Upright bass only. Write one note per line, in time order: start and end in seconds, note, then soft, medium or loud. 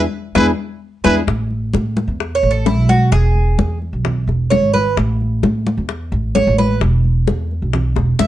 0.35 0.52 E2 medium
1.05 1.22 E2 medium
1.27 1.71 A1 loud
1.74 2.07 A2 medium
2.08 2.41 E2 medium
2.43 2.77 A1 medium
2.77 3.10 B1 loud
3.12 3.56 E1 loud
3.58 3.91 E2 medium
3.93 4.26 B1 medium
4.27 4.62 E1 medium
4.62 4.95 G#1 medium
4.97 5.41 A1 loud
5.43 5.76 A2 medium
5.77 6.10 E2 medium
6.12 6.45 A1 medium
6.47 6.80 A1 medium
6.81 7.25 E1 loud
7.27 7.60 E2 medium
7.62 7.95 B1 medium
7.96 8.19 E1 medium
8.20 8.27 F#1 medium